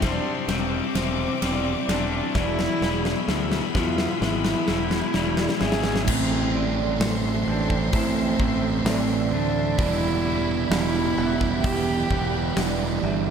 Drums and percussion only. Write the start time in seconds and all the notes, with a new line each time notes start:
0.02 kick, snare, ride
0.49 snare, ride
0.95 snare, ride
1.42 snare, ride
1.89 snare, ride
2.35 kick, snare
2.59 snare
2.82 snare
3.05 snare
3.29 snare
3.52 snare
3.75 kick, snare
3.98 snare
4.22 snare
4.45 snare
4.68 snare
4.91 snare
5.14 snare
5.37 snare
5.49 snare
5.61 snare
5.72 snare
5.84 snare
5.96 snare
6.08 kick, crash
7.01 snare, open hi-hat
7.70 kick
7.93 kick, open hi-hat
8.40 kick
8.86 snare, open hi-hat
9.79 kick, open hi-hat
10.72 snare, open hi-hat
11.41 kick, snare
11.64 kick, open hi-hat
12.11 kick
12.57 snare, open hi-hat